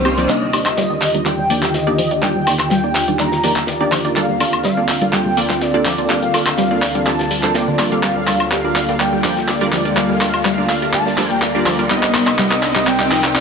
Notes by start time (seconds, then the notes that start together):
Already playing: C2 C3 G3 A#3 C4 D#4 A#4 C5 D6, riser
0.05 A#3 C4 D#4 G4 C5, high woodblock
0.18 F3 A#3 C4 D#4 G4 D5, closed hi-hat
0.29 D#2 D3 D#3 G3 A#3 D4 D#4 F4 G4 D5 D#5, clap, closed hi-hat, tambourine, riser
0.42 G3
0.53 A#3 D4 D#4 G4 D5, open hi-hat, tambourine, high woodblock
0.66 clap, closed hi-hat, high woodblock
0.77 G3 D#5, snare, closed hi-hat, tambourine
0.90 A#3 D4 D#4 G4 D5
1.02 D4, clap, open hi-hat, tambourine
1.14 G3 A#3 D4 D#4 G4 D5, closed hi-hat
1.26 G3 A#3 D4 D#4 G4 D5 G5, clap, closed hi-hat, tambourine
1.39 G3
1.50 F3 A#3 D4 D#4 G4 D5, open hi-hat, tambourine
1.63 G3, snare, clap, closed hi-hat
1.74 D#5, snare, closed hi-hat, tambourine
1.87 A#3 D4 D#4 G4 D5, closed hi-hat
1.98 F3, open hi-hat, tambourine
2.11 A#3 D4 D#4 G4 D5, closed hi-hat
2.23 G3 A#3 D4 D#4 G4 D5 G5, clap, closed hi-hat, tambourine
2.35 G3
2.47 A#3 D4 D#4 G4 D5, snare, open hi-hat, tambourine, high woodblock
2.59 clap, closed hi-hat, high woodblock
2.70 G3 G5, snare, closed hi-hat, tambourine
2.84 A#3 D4 D#4 G4 D5
2.95 D4, clap, open hi-hat, tambourine
3.08 G3 A#3 D4 D#4 G4 D5, closed hi-hat
3.19 G3 A#3 D4 D#4 G4 D5 A#5, clap, closed hi-hat, tambourine
3.32 G3, snare
3.44 F3 A#3 D4 D#4 G4 D5, open hi-hat, tambourine
3.56 G3, clap, closed hi-hat
3.67 D5, snare, closed hi-hat, tambourine
3.80 A#3 D4 D#4 G4 D5
3.92 F3, clap, open hi-hat, tambourine, high woodblock
4.05 A#3 D4 D#4 G4 D5, closed hi-hat
4.16 D2 D3 G3 A#3 C4 D4 F4 A4 D5 F5, clap, closed hi-hat, tambourine
4.29 G3
4.40 A#3 D4 F4 A4 D5, open hi-hat, tambourine, high woodblock
4.53 closed hi-hat, high woodblock
4.64 G3 F5, snare, closed hi-hat, tambourine
4.77 A#3 D4 F4 A4 D5
4.88 D4, clap, open hi-hat, tambourine
5.01 G3 A#3 D4 F4 A4 D5, closed hi-hat
5.13 G3 A#3 D4 F4 A4 D5 G5, clap, closed hi-hat, tambourine
5.26 G3
5.37 F3 A#3 D4 F4 A4 D5, open hi-hat, tambourine
5.50 G3, snare, clap, closed hi-hat
5.61 D5, snare, closed hi-hat, tambourine
5.74 A#3 D4 F4 G4 A4 D5, closed hi-hat
5.85 F3, clap, open hi-hat, tambourine
5.98 A#3 D4 F4 A4 D5, closed hi-hat
6.10 G3 A#3 D4 F4 A4 D5 F5, clap, closed hi-hat, tambourine
6.22 G3, closed hi-hat
6.34 A#3 D4 F4 A4 D5, snare, open hi-hat, tambourine, high woodblock
6.47 clap, closed hi-hat, high woodblock
6.58 G3 F5, snare, closed hi-hat, tambourine
6.71 A#3 D4 F4 A4 D5
6.82 D4, clap, open hi-hat, tambourine
6.95 G3 A#3 D4 F4 A4 D5, closed hi-hat
7.06 G3 A#3 D4 F4 A4 D5 A5, clap, closed hi-hat, tambourine
7.19 G3, snare, closed hi-hat
7.31 G3, open hi-hat, tambourine
7.43 G3 A#3 D4 F4 A4 C5, clap, closed hi-hat
7.54 A#3 D4 F4 A4 D5 G5, snare, closed hi-hat, tambourine
7.68 D3
7.79 G3 A#3 D4 F4 A4 D5, clap, open hi-hat, tambourine, high woodblock
7.92 G3 A#3 D4 F4 A4 F5, closed hi-hat
8.03 G3 A#3 D4 F4 A#4 D5 F5, clap, closed hi-hat, tambourine
8.16 G3
8.27 G3 D4 F4 A#4 D5, clap, open hi-hat, tambourine, high woodblock
8.40 closed hi-hat, high woodblock
8.52 G3 F5, snare, clap, closed hi-hat, tambourine
8.64 G3 D4 F4 A#4 D5
8.76 D4, clap, open hi-hat, tambourine
8.89 G3 D4 F4 A#4 D5, closed hi-hat
9.00 G3 D4 F4 A#4 D5 G5, clap, closed hi-hat, tambourine
9.13 G3
9.24 F3 G3 D4 F4 A#4 D5, clap, open hi-hat, tambourine
9.37 G3, snare, closed hi-hat
9.48 D5, snare, clap, closed hi-hat, tambourine
9.61 G3 D4 F4 G4 A#4 D5, closed hi-hat
9.73 F3, clap, open hi-hat, tambourine
9.85 G3 D4 F4 A#4 D5, closed hi-hat
9.97 G3 D4 F4 A#4 D5 F5, clap, closed hi-hat, tambourine
10.09 G3
10.21 G3 D4 F4 A#4 D5, snare, clap, open hi-hat, tambourine, high woodblock
10.34 closed hi-hat, high woodblock
10.45 G3 F5, snare, clap, closed hi-hat, tambourine
10.58 G3 D4 F4 A#4 D5
10.69 D4, clap, open hi-hat, tambourine
10.82 G3 D4 F4 A#4 D5, closed hi-hat
10.93 G3 D4 F4 A#4 D5 A5, clap, closed hi-hat, tambourine
11.06 G3, snare
11.18 F3 G3 D4 F4 A#4 D5, clap, open hi-hat, tambourine
11.30 G3 G5, closed hi-hat
11.42 D5, snare, clap, closed hi-hat, tambourine
11.55 G3 D4 F4 G4 A#4 D5
11.66 F3, clap, open hi-hat, tambourine, high woodblock
11.79 G3 D4 F4 A#4 D5, closed hi-hat
11.90 C2 C3 G3 C4 D#4 A#4 D#5, clap, closed hi-hat, tambourine
12.03 G3, clap
12.14 G3 C4 D#4 A#4 D#5, clap, open hi-hat, tambourine, high woodblock
12.27 clap, closed hi-hat, high woodblock
12.39 G3 D#5, snare, clap, closed hi-hat, tambourine
12.51 G3 C4 D#4 A#4 D#5, clap
12.63 D4, clap, open hi-hat, tambourine
12.76 G3 C4 D#4 A#4 D#5, clap, closed hi-hat
12.87 G3 C4 D#4 A#4 D#5 G5, clap, closed hi-hat, tambourine
13.00 G3, clap
13.11 F3 G3 C4 D#4 A#4 D#5, snare, clap, open hi-hat, tambourine
13.24 G3, snare, clap, closed hi-hat, tambourine
13.36 D#5, snare, clap, closed hi-hat, tambourine